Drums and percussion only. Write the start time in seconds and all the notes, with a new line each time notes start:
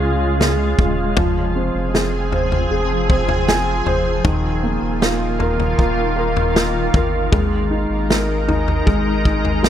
0.41 snare
0.79 kick, floor tom
1.17 kick, floor tom
1.95 snare
2.32 floor tom
2.52 floor tom
3.10 kick
3.29 floor tom
3.48 snare
3.86 floor tom
4.25 kick, floor tom
5.02 snare
5.40 floor tom
5.60 floor tom
5.79 kick
6.37 floor tom
6.56 snare
6.94 kick, floor tom
7.33 kick, floor tom
8.11 snare
8.49 floor tom
8.68 floor tom
8.87 kick
9.25 kick
9.45 floor tom
9.64 snare